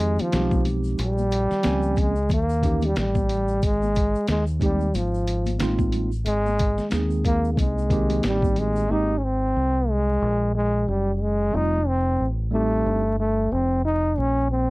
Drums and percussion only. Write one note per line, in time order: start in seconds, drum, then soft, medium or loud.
0.00 closed hi-hat medium
0.18 closed hi-hat medium
0.18 high conga soft
0.18 shaker soft
0.32 snare loud
0.32 closed hi-hat medium
0.32 shaker medium
0.51 kick loud
0.51 high conga medium
0.51 shaker soft
0.65 closed hi-hat medium
0.65 low conga soft
0.65 shaker soft
0.84 shaker soft
0.98 closed hi-hat medium
0.98 shaker medium
1.18 high conga soft
1.18 shaker soft
1.31 closed hi-hat medium
1.31 shaker soft
1.51 snare soft
1.51 shaker soft
1.63 snare loud
1.63 closed hi-hat medium
1.63 shaker medium
1.82 shaker soft
1.96 kick medium
1.96 closed hi-hat medium
1.96 low conga medium
1.96 shaker soft
2.16 shaker soft
2.29 kick medium
2.29 closed hi-hat medium
2.29 high conga soft
2.29 low conga medium
2.29 shaker medium
2.50 shaker medium
2.63 kick medium
2.63 closed hi-hat medium
2.63 shaker soft
2.81 closed hi-hat medium
2.81 high conga medium
2.81 shaker soft
2.96 snare loud
2.96 closed hi-hat medium
2.96 shaker medium
3.15 kick medium
3.15 high conga medium
3.15 shaker soft
3.29 closed hi-hat medium
3.29 low conga medium
3.29 shaker soft
3.48 shaker soft
3.62 kick loud
3.62 closed hi-hat loud
3.62 shaker medium
3.83 high conga soft
3.83 shaker soft
3.95 kick medium
3.95 closed hi-hat medium
3.95 shaker soft
4.15 shaker soft
4.27 snare loud
4.27 closed hi-hat medium
4.27 shaker medium
4.47 shaker soft
4.61 kick medium
4.61 closed hi-hat medium
4.61 low conga medium
4.61 shaker soft
4.81 shaker soft
4.94 closed hi-hat medium
4.94 high conga soft
4.94 low conga medium
4.94 shaker medium
5.14 shaker soft
5.27 closed hi-hat medium
5.27 shaker soft
5.46 closed hi-hat soft
5.46 high conga medium
5.46 shaker soft
5.60 snare loud
5.60 closed hi-hat medium
5.60 shaker medium
5.79 kick medium
5.79 high conga medium
5.79 shaker soft
5.92 closed hi-hat medium
5.92 low conga medium
5.92 shaker soft
6.12 shaker soft
6.26 closed hi-hat medium
6.26 shaker medium
6.46 high conga soft
6.46 shaker soft
6.59 kick loud
6.59 closed hi-hat medium
6.59 shaker soft
6.78 snare soft
6.78 shaker soft
6.91 snare medium
6.91 closed hi-hat medium
6.91 shaker medium
7.10 shaker soft
7.24 kick medium
7.24 closed hi-hat medium
7.24 low conga medium
7.24 shaker soft
7.45 shaker soft
7.57 kick loud
7.57 closed hi-hat medium
7.57 high conga soft
7.57 low conga medium
7.57 shaker medium
7.78 shaker soft
7.90 kick medium
7.90 closed hi-hat medium
7.90 shaker soft
8.10 closed hi-hat medium
8.10 high conga medium
8.10 shaker soft
8.23 snare loud
8.23 closed hi-hat medium
8.23 shaker medium
8.42 kick loud
8.42 high conga medium
8.42 shaker soft
8.56 closed hi-hat medium
8.56 low conga medium
8.56 shaker soft
8.76 shaker soft